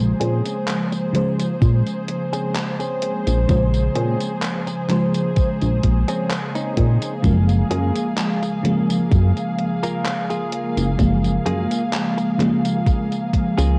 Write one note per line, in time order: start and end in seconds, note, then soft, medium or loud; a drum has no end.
0.00 0.14 A#1 medium
0.00 1.09 C#3 medium
0.00 1.09 F3 medium
0.00 1.10 G#3 medium
0.00 13.79 A#3 medium
0.00 13.79 G#4 medium
0.00 1.10 C5 medium
0.00 7.20 C5 medium
0.20 0.42 A#2 medium
0.20 0.57 C4 medium
0.20 0.57 C#4 medium
0.20 0.57 G#4 loud
0.20 closed hi-hat medium
0.46 closed hi-hat medium
0.46 tambourine medium
0.68 clap loud
0.68 closed hi-hat medium
0.68 tambourine soft
0.92 muted clean electric guitar stroke medium
0.92 closed hi-hat soft
0.92 tambourine soft
1.13 3.43 C#3 medium
1.13 3.43 F3 medium
1.13 3.44 G#3 medium
1.13 3.44 C5 loud
1.13 muted clean electric guitar stroke soft
1.13 closed hi-hat medium
1.40 closed hi-hat medium
1.40 tambourine medium
1.61 1.82 A#2 medium
1.61 muted clean electric guitar stroke soft
1.61 kick loud
1.61 closed hi-hat medium
1.61 tambourine soft
1.86 closed hi-hat soft
1.86 tambourine soft
2.08 closed hi-hat medium
2.33 2.55 C4 medium
2.33 2.55 C#4 loud
2.33 2.55 G#4 loud
2.33 closed hi-hat medium
2.33 tambourine medium
2.55 clap loud
2.55 closed hi-hat soft
2.55 tambourine soft
2.79 3.38 C4 medium
2.79 3.38 C#4 medium
2.79 3.38 G#4 medium
2.79 closed hi-hat soft
2.79 tambourine soft
3.02 closed hi-hat medium
3.27 3.45 A#1 loud
3.27 closed hi-hat medium
3.27 tambourine medium
3.48 3.89 A#1 loud
3.48 4.84 C#3 medium
3.48 4.84 F3 medium
3.48 4.85 G#3 medium
3.48 4.85 C5 medium
3.48 kick loud
3.48 closed hi-hat medium
3.48 tambourine soft
3.74 closed hi-hat soft
3.74 tambourine soft
3.95 4.17 A#2 medium
3.95 4.32 C4 medium
3.95 4.32 C#4 loud
3.95 4.32 G#4 loud
3.95 closed hi-hat medium
4.21 closed hi-hat medium
4.21 tambourine medium
4.42 clap loud
4.42 closed hi-hat medium
4.42 tambourine soft
4.67 muted clean electric guitar stroke medium
4.67 closed hi-hat soft
4.67 tambourine soft
4.88 7.18 C#3 medium
4.88 7.19 F3 medium
4.88 7.19 G#3 medium
4.88 7.20 C5 loud
4.88 muted clean electric guitar stroke soft
4.88 clap soft
4.88 closed hi-hat medium
5.14 closed hi-hat soft
5.14 tambourine medium
5.36 muted clean electric guitar stroke soft
5.36 kick loud
5.36 closed hi-hat soft
5.36 tambourine soft
5.61 5.80 A#1 medium
5.61 closed hi-hat soft
5.61 tambourine soft
5.83 6.04 A#1 medium
5.83 kick medium
5.83 closed hi-hat medium
6.08 6.30 C4 medium
6.08 6.30 C#4 medium
6.08 6.30 G#4 loud
6.08 closed hi-hat medium
6.08 tambourine medium
6.31 clap loud
6.31 closed hi-hat medium
6.31 tambourine soft
6.55 7.13 C4 medium
6.55 7.13 C#4 medium
6.55 7.13 D#4 medium
6.55 closed hi-hat soft
6.55 tambourine soft
6.77 6.98 A#2 medium
6.77 kick loud
6.77 closed hi-hat medium
7.02 closed hi-hat medium
7.02 tambourine medium
7.22 7.64 F#1 loud
7.22 8.59 C#3 medium
7.22 8.59 F3 medium
7.22 8.60 G#3 medium
7.22 8.60 A#3 medium
7.22 13.79 F5 medium
7.22 kick loud
7.22 closed hi-hat medium
7.22 tambourine soft
7.49 closed hi-hat soft
7.49 tambourine soft
7.71 7.92 F#2 medium
7.71 8.07 A#3 medium
7.71 8.07 F4 medium
7.71 8.07 G#4 loud
7.71 closed hi-hat medium
7.96 closed hi-hat soft
7.96 tambourine medium
8.18 clap loud
8.18 closed hi-hat medium
8.18 tambourine soft
8.43 muted clean electric guitar stroke medium
8.43 closed hi-hat soft
8.43 tambourine soft
8.63 10.93 C#3 medium
8.63 10.94 F3 medium
8.63 10.94 G#3 medium
8.63 10.94 A#3 loud
8.63 muted clean electric guitar stroke soft
8.63 closed hi-hat medium
8.90 closed hi-hat soft
8.90 tambourine medium
9.11 9.32 F#2 medium
9.11 muted clean electric guitar stroke soft
9.11 kick loud
9.11 closed hi-hat soft
9.11 tambourine soft
9.37 closed hi-hat soft
9.37 tambourine soft
9.59 closed hi-hat medium
9.83 10.05 A#3 loud
9.83 10.05 F4 medium
9.83 10.05 A#4 loud
9.83 closed hi-hat soft
9.83 tambourine medium
10.05 clap loud
10.05 closed hi-hat soft
10.05 tambourine soft
10.30 10.88 A#3 medium
10.30 10.88 F4 medium
10.30 10.88 G#4 medium
10.30 closed hi-hat soft
10.30 tambourine soft
10.52 closed hi-hat medium
10.77 10.95 F#1 loud
10.77 closed hi-hat soft
10.77 tambourine medium
10.98 11.39 F#1 loud
10.98 12.34 C#3 medium
10.98 12.34 F3 medium
10.98 12.35 G#3 medium
10.98 12.35 A#3 medium
10.98 kick loud
10.98 closed hi-hat soft
10.98 tambourine soft
11.24 closed hi-hat soft
11.24 tambourine soft
11.46 11.67 F#2 medium
11.46 11.82 A#3 loud
11.46 11.82 F4 loud
11.46 11.82 G#4 loud
11.46 closed hi-hat medium
11.71 closed hi-hat soft
11.71 tambourine soft
11.93 clap loud
11.93 closed hi-hat soft
11.93 tambourine soft
12.17 muted clean electric guitar stroke medium
12.17 closed hi-hat soft
12.17 tambourine soft
12.38 13.75 C#3 medium
12.38 13.76 F3 medium
12.38 13.76 G#3 medium
12.38 13.77 A#3 loud
12.38 muted clean electric guitar stroke soft
12.38 clap soft
12.38 closed hi-hat medium
12.65 closed hi-hat soft
12.65 tambourine soft
12.86 muted clean electric guitar stroke soft
12.86 kick loud
12.86 closed hi-hat soft
12.86 tambourine soft
13.12 closed hi-hat soft
13.12 tambourine soft
13.33 kick medium
13.33 closed hi-hat medium
13.57 13.79 C#2 medium
13.57 13.79 A#3 loud
13.57 13.79 F4 medium
13.57 13.79 G#4 loud
13.57 closed hi-hat soft
13.57 tambourine medium